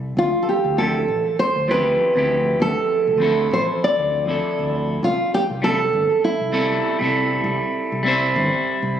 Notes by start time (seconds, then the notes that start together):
Already playing: C2
0.17 D2 F4
0.43 A4
0.49 G4
0.65 D2
0.78 F3 C4 E4 G4 A4
1.08 A1
1.39 C5
1.56 D2
1.68 F3 C4 E4 G4 B4
2.14 D2 F3 C4 E4
2.19 G4
2.60 D2 A4
3.07 D2
3.18 F3 C4 E4
3.23 A4
3.51 A1 C5
3.84 D5
3.98 D2
4.25 F3 C4 E4
4.31 A4
4.59 D2
5.03 C2 F4
5.34 G4
5.50 C2
5.62 G3 C4 E4 A4
5.93 G1
6.24 E4
6.40 C2
6.52 G3 C4 E4 A4
6.99 C2 G3 C4 E4
7.04 A4
7.44 C2
7.92 C2
8.03 G3 C4 E4
8.08 C5
8.36 G1
8.82 C2